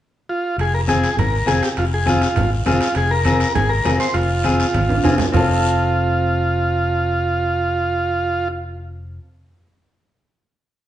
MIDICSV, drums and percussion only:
0, 0, Header, 1, 2, 480
1, 0, Start_track
1, 0, Tempo, 297619
1, 943, Time_signature, 4, 2, 24, 8
1, 17541, End_track
2, 0, Start_track
2, 0, Title_t, "Drums"
2, 951, Note_on_c, 9, 74, 71
2, 957, Note_on_c, 9, 63, 34
2, 957, Note_on_c, 9, 65, 61
2, 1113, Note_off_c, 9, 74, 0
2, 1118, Note_off_c, 9, 63, 0
2, 1118, Note_off_c, 9, 65, 0
2, 1432, Note_on_c, 9, 73, 69
2, 1433, Note_on_c, 9, 65, 64
2, 1435, Note_on_c, 9, 63, 81
2, 1593, Note_off_c, 9, 73, 0
2, 1594, Note_off_c, 9, 65, 0
2, 1597, Note_off_c, 9, 63, 0
2, 1670, Note_on_c, 9, 65, 63
2, 1672, Note_on_c, 9, 73, 66
2, 1831, Note_off_c, 9, 65, 0
2, 1833, Note_off_c, 9, 73, 0
2, 1912, Note_on_c, 9, 63, 36
2, 1912, Note_on_c, 9, 64, 85
2, 1915, Note_on_c, 9, 74, 66
2, 1916, Note_on_c, 9, 65, 61
2, 2073, Note_off_c, 9, 63, 0
2, 2073, Note_off_c, 9, 64, 0
2, 2076, Note_off_c, 9, 74, 0
2, 2078, Note_off_c, 9, 65, 0
2, 2380, Note_on_c, 9, 63, 79
2, 2386, Note_on_c, 9, 73, 65
2, 2387, Note_on_c, 9, 65, 72
2, 2542, Note_off_c, 9, 63, 0
2, 2548, Note_off_c, 9, 65, 0
2, 2548, Note_off_c, 9, 73, 0
2, 2624, Note_on_c, 9, 65, 65
2, 2633, Note_on_c, 9, 73, 68
2, 2785, Note_off_c, 9, 65, 0
2, 2794, Note_off_c, 9, 73, 0
2, 2855, Note_on_c, 9, 65, 68
2, 2863, Note_on_c, 9, 63, 33
2, 2868, Note_on_c, 9, 74, 71
2, 3017, Note_off_c, 9, 65, 0
2, 3024, Note_off_c, 9, 63, 0
2, 3029, Note_off_c, 9, 74, 0
2, 3335, Note_on_c, 9, 65, 66
2, 3348, Note_on_c, 9, 63, 81
2, 3358, Note_on_c, 9, 73, 72
2, 3496, Note_off_c, 9, 65, 0
2, 3509, Note_off_c, 9, 63, 0
2, 3519, Note_off_c, 9, 73, 0
2, 3573, Note_on_c, 9, 65, 64
2, 3583, Note_on_c, 9, 73, 66
2, 3734, Note_off_c, 9, 65, 0
2, 3744, Note_off_c, 9, 73, 0
2, 3806, Note_on_c, 9, 65, 61
2, 3825, Note_on_c, 9, 74, 64
2, 3828, Note_on_c, 9, 63, 36
2, 3828, Note_on_c, 9, 64, 88
2, 3967, Note_off_c, 9, 65, 0
2, 3986, Note_off_c, 9, 74, 0
2, 3989, Note_off_c, 9, 63, 0
2, 3989, Note_off_c, 9, 64, 0
2, 4294, Note_on_c, 9, 65, 69
2, 4294, Note_on_c, 9, 66, 71
2, 4303, Note_on_c, 9, 63, 73
2, 4310, Note_on_c, 9, 73, 68
2, 4455, Note_off_c, 9, 65, 0
2, 4455, Note_off_c, 9, 66, 0
2, 4465, Note_off_c, 9, 63, 0
2, 4471, Note_off_c, 9, 73, 0
2, 4526, Note_on_c, 9, 65, 69
2, 4544, Note_on_c, 9, 73, 74
2, 4687, Note_off_c, 9, 65, 0
2, 4705, Note_off_c, 9, 73, 0
2, 4756, Note_on_c, 9, 65, 71
2, 4775, Note_on_c, 9, 63, 33
2, 4775, Note_on_c, 9, 74, 70
2, 4917, Note_off_c, 9, 65, 0
2, 4936, Note_off_c, 9, 63, 0
2, 4936, Note_off_c, 9, 74, 0
2, 5240, Note_on_c, 9, 65, 68
2, 5249, Note_on_c, 9, 63, 80
2, 5265, Note_on_c, 9, 73, 67
2, 5401, Note_off_c, 9, 65, 0
2, 5410, Note_off_c, 9, 63, 0
2, 5427, Note_off_c, 9, 73, 0
2, 5489, Note_on_c, 9, 65, 65
2, 5501, Note_on_c, 9, 73, 69
2, 5650, Note_off_c, 9, 65, 0
2, 5662, Note_off_c, 9, 73, 0
2, 5733, Note_on_c, 9, 63, 37
2, 5733, Note_on_c, 9, 64, 86
2, 5733, Note_on_c, 9, 65, 66
2, 5741, Note_on_c, 9, 74, 68
2, 5894, Note_off_c, 9, 63, 0
2, 5894, Note_off_c, 9, 64, 0
2, 5894, Note_off_c, 9, 65, 0
2, 5903, Note_off_c, 9, 74, 0
2, 6212, Note_on_c, 9, 63, 78
2, 6214, Note_on_c, 9, 73, 68
2, 6217, Note_on_c, 9, 65, 71
2, 6217, Note_on_c, 9, 66, 68
2, 6373, Note_off_c, 9, 63, 0
2, 6376, Note_off_c, 9, 73, 0
2, 6378, Note_off_c, 9, 65, 0
2, 6378, Note_off_c, 9, 66, 0
2, 6449, Note_on_c, 9, 65, 68
2, 6450, Note_on_c, 9, 73, 71
2, 6610, Note_off_c, 9, 65, 0
2, 6611, Note_off_c, 9, 73, 0
2, 6681, Note_on_c, 9, 65, 62
2, 6682, Note_on_c, 9, 74, 74
2, 6699, Note_on_c, 9, 63, 35
2, 6842, Note_off_c, 9, 65, 0
2, 6843, Note_off_c, 9, 74, 0
2, 6861, Note_off_c, 9, 63, 0
2, 7160, Note_on_c, 9, 65, 65
2, 7172, Note_on_c, 9, 73, 72
2, 7188, Note_on_c, 9, 63, 78
2, 7322, Note_off_c, 9, 65, 0
2, 7334, Note_off_c, 9, 73, 0
2, 7350, Note_off_c, 9, 63, 0
2, 7415, Note_on_c, 9, 73, 65
2, 7416, Note_on_c, 9, 65, 63
2, 7576, Note_off_c, 9, 73, 0
2, 7577, Note_off_c, 9, 65, 0
2, 7650, Note_on_c, 9, 65, 65
2, 7652, Note_on_c, 9, 74, 65
2, 7654, Note_on_c, 9, 63, 90
2, 7812, Note_off_c, 9, 65, 0
2, 7814, Note_off_c, 9, 74, 0
2, 7815, Note_off_c, 9, 63, 0
2, 7893, Note_on_c, 9, 65, 72
2, 7909, Note_on_c, 9, 63, 75
2, 8054, Note_off_c, 9, 65, 0
2, 8070, Note_off_c, 9, 63, 0
2, 8127, Note_on_c, 9, 65, 90
2, 8138, Note_on_c, 9, 73, 70
2, 8145, Note_on_c, 9, 64, 72
2, 8289, Note_off_c, 9, 65, 0
2, 8299, Note_off_c, 9, 73, 0
2, 8307, Note_off_c, 9, 64, 0
2, 8357, Note_on_c, 9, 66, 95
2, 8378, Note_on_c, 9, 64, 90
2, 8385, Note_on_c, 9, 73, 73
2, 8518, Note_off_c, 9, 66, 0
2, 8539, Note_off_c, 9, 64, 0
2, 8546, Note_off_c, 9, 73, 0
2, 8605, Note_on_c, 9, 66, 96
2, 8616, Note_on_c, 9, 64, 94
2, 8623, Note_on_c, 9, 74, 97
2, 8766, Note_off_c, 9, 66, 0
2, 8777, Note_off_c, 9, 64, 0
2, 8784, Note_off_c, 9, 74, 0
2, 17541, End_track
0, 0, End_of_file